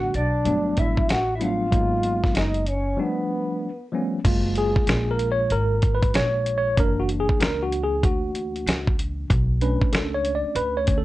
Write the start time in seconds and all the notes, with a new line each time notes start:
Already playing: A1 D3 G3 A3 B3 D4 F#4 F#5
0.14 B1 D4 D5, closed hi-hat
0.44 G1 F#3 G3 A3 B3 D4, closed hi-hat
0.76 A1 E5, kick, closed hi-hat
0.81 E4
0.97 kick
1.08 A1 F#4 F#5, snare, closed hi-hat
1.35 E4 E5
1.39 F#3 G3 A3 B3 D4 F5, closed hi-hat
1.44 F4
1.71 G#1 F#3 G#3 A#3 B3 D#4, kick, closed hi-hat
2.03 closed hi-hat
2.24 kick, snare
2.34 F#1 D#4 D#5, snare, closed hi-hat
2.54 closed hi-hat
2.67 C#4 C#5, closed hi-hat
2.97 F3 G3 A3 B3 D4 B4
3.92 F3 G3 A3 B3 C#4
4.24 F#1 G#3 A#3 F4, kick, closed hi-hat, crash
4.56 G#4, closed hi-hat
4.76 muted upright bass stroke, kick
4.87 A#1, snare, closed hi-hat
5.11 A#4
5.19 closed hi-hat
5.32 C#5
5.50 G#1 A#4, closed hi-hat
5.82 kick, closed hi-hat
5.94 B4
6.02 kick, closed hi-hat
6.14 A#1 C#5, snare, closed hi-hat
6.46 closed hi-hat
6.58 C#5
6.77 F#1 E3 A#3 D4 A#4, kick, closed hi-hat
6.99 F#4
7.09 closed hi-hat
7.20 G#4
7.29 muted upright bass stroke, kick
7.40 C#2 A#4, snare, closed hi-hat
7.62 F#4
7.72 closed hi-hat
7.83 G#4
8.03 D2 F#4, kick, closed hi-hat
8.35 closed hi-hat
8.56 closed hi-hat
8.66 C#2, snare, closed hi-hat
8.87 kick
8.99 closed hi-hat
9.30 B1, kick, closed hi-hat
9.61 A3 C#4 D4 B4, closed hi-hat
9.82 kick
9.93 C#2 A4, snare, closed hi-hat
10.14 C#5
10.25 closed hi-hat
10.35 D5
10.44 muted upright bass stroke
10.55 D2 B4, closed hi-hat
10.77 C#5
10.86 D3 A3 C#4, kick, closed hi-hat
10.98 A4